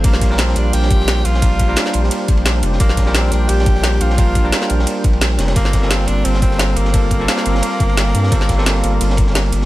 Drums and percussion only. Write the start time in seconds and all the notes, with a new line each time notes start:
0.04 kick, closed hi-hat, ride, ride bell
0.13 snare
0.21 kick, snare, closed hi-hat, ride, ride bell
0.31 snare
0.38 snare, closed hi-hat, ride, ride bell
0.48 snare
0.56 closed hi-hat, ride, ride bell
0.73 closed hi-hat, ride, ride bell
0.82 snare
0.91 kick, closed hi-hat, ride, ride bell
1.00 snare
1.08 snare, closed hi-hat, ride, ride bell
1.25 closed hi-hat, ride, ride bell
1.34 snare
1.42 kick, closed hi-hat, ride, ride bell
1.59 kick, closed hi-hat, ride, ride bell
1.76 snare, closed hi-hat, ride, ride bell
1.86 snare
1.93 closed hi-hat, ride, ride bell
2.04 snare
2.11 closed hi-hat, ride, ride bell
2.28 kick, closed hi-hat, ride, ride bell
2.37 ride
2.45 snare, closed hi-hat, ride, ride bell
2.63 closed hi-hat, ride, ride bell
2.73 snare
2.80 kick, closed hi-hat, ride, ride bell
2.89 snare
2.97 kick, snare, closed hi-hat, ride, ride bell
3.06 snare
3.15 snare, closed hi-hat, ride, ride bell
3.24 snare
3.32 closed hi-hat, ride, ride bell
3.49 closed hi-hat, ride, ride bell
3.59 snare
3.66 kick, closed hi-hat, ride, ride bell
3.75 snare
3.83 snare, closed hi-hat, ride, ride bell
4.01 closed hi-hat, ride, ride bell
4.10 snare
4.18 kick, closed hi-hat, ride, ride bell
4.35 kick, closed hi-hat, ride, ride bell
4.52 snare, closed hi-hat, ride, ride bell
4.62 snare
4.69 closed hi-hat, ride, ride bell
4.79 snare
4.87 closed hi-hat, ride, ride bell
5.04 kick, closed hi-hat, ride, ride bell
5.13 ride
5.21 snare, closed hi-hat, ride, ride bell
5.38 snare, closed hi-hat, ride, ride bell
5.48 snare, ride
5.56 kick, closed hi-hat, ride, ride bell
5.65 snare
5.73 kick, snare, closed hi-hat, ride, ride bell
5.82 snare
5.91 snare, closed hi-hat, ride, ride bell
5.99 snare
6.07 closed hi-hat, ride, ride bell
6.25 closed hi-hat, ride, ride bell
6.34 snare
6.42 kick, closed hi-hat, ride, ride bell
6.51 snare
6.59 snare, closed hi-hat, ride, ride bell
6.76 closed hi-hat, ride, ride bell
6.85 snare
6.94 kick, closed hi-hat, ride, ride bell
7.11 kick, closed hi-hat, ride, ride bell
7.28 snare, closed hi-hat, ride, ride bell
7.38 snare
7.45 closed hi-hat, ride, ride bell
7.55 snare
7.62 closed hi-hat, ride, ride bell
7.80 kick, closed hi-hat, ride, ride bell
7.89 ride
7.97 snare, closed hi-hat, ride, ride bell
8.14 closed hi-hat, ride, ride bell
8.23 snare
8.32 kick, closed hi-hat, ride, ride bell
8.41 snare
8.49 kick, snare, closed hi-hat, ride, ride bell
8.58 snare
8.66 snare, closed hi-hat, ride, ride bell
8.75 snare
8.84 closed hi-hat, ride, ride bell
9.01 closed hi-hat, ride, ride bell
9.10 snare
9.17 kick, closed hi-hat, ride, ride bell
9.27 snare
9.35 snare, closed hi-hat, ride, ride bell
9.53 closed hi-hat, ride, ride bell
9.62 snare